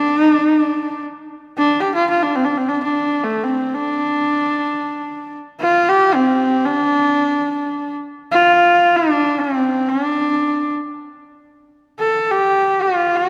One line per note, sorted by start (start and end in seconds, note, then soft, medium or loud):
0.00 0.19 D4 medium
0.19 0.31 D#4 medium
0.31 0.45 D4 medium
0.45 0.57 D#4 medium
0.57 1.03 D4 medium
1.57 1.82 D4 medium
1.80 1.94 G4 medium
1.95 2.09 F4 medium
2.10 2.24 F4 medium
2.23 2.37 D4 medium
2.36 2.46 C4 medium
2.45 2.59 D4 medium
2.58 2.70 C4 medium
2.69 2.83 D4 medium
2.83 3.25 D4 medium
3.24 3.45 A3 medium
3.44 3.76 C4 medium
3.75 5.38 D4 medium
5.60 5.90 F4 medium
5.89 6.16 G4 medium
6.14 6.67 C4 medium
6.65 7.95 D4 medium
8.32 8.97 F4 medium
8.96 9.42 D4 medium
9.40 9.90 C4 medium
9.89 10.73 D4 medium
11.99 12.32 A4 medium
12.31 12.84 G4 medium
12.82 13.18 F4 medium
13.16 13.29 G4 loud